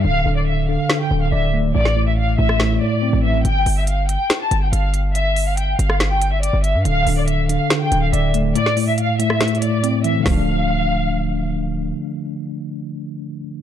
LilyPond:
<<
  \new Staff \with { instrumentName = "Violin section" } { \time 4/4 \key d \minor \tempo 4 = 141 f''8. d''16 e''8 f''8. g''8 f''16 e''8 r8 | d''8. e''16 f''8 e''4 d''4 e''8 | g''8. e''16 f''8 g''8. a''8 g''16 f''8 r8 | e''8. f''16 g''8 f''8. g''8 e''16 d''8 e''8 |
f''8. d''16 e''8 f''8. g''8 f''16 e''8 r8 | d''8. e''16 f''8 e''4 d''4 e''8 | f''2. r4 | r1 | }
  \new Staff \with { instrumentName = "Tine electric piano" } { \clef bass \time 4/4 \key d \minor d8 d4 d8 d8 d8 d''8 a8 | a,8 a,4 a,8 a,8 a,8 c'8 e8 | r1 | r1 |
d8 d4 d8 d8 d8 d''8 a8 | a,8 a,4 a,8 a,8 a,8 c'8 e8 | <d f a d'>1~ | <d f a d'>1 | }
  \new Staff \with { instrumentName = "808-style bass" } { \clef bass \time 4/4 \key d \minor d,,8 d,,4~ d,,16 r8. d,,8 d,,4 | a,,4. a,,4 r8. a,,8. | g,,8 g,,4~ g,,16 r8. g,,8 g,,4~ | g,,4. g,,4.~ g,,16 g,,8 g,16 |
d,,8 d,,4~ d,,16 r8. d,,8 d,,4 | r1 | d,,1 | r1 | }
  \new DrumStaff \with { instrumentName = "Drums" } \drummode { \time 4/4 r4 r4 sn4 r4 | r16 sn8. r8. ss16 sn4 r4 | hh8 hho8 hh8 hh8 <hh sn>8 hh8 hh8 hh8 | hh8 hho8 hh8 hh16 ss16 <hh sn>8 hh8 hh8 hh8 |
hh8 hho8 hh8 hh8 <hh sn>8 hh8 hh8 hh8 | hh16 sn16 hho8 hh8 hh16 ss16 \tuplet 3/2 { <hh sn>16 hh16 hh16 hh16 r16 r16 } hh8 hh8 | <hho bd sn>4 r4 r4 r4 | r4 r4 r4 r4 | }
>>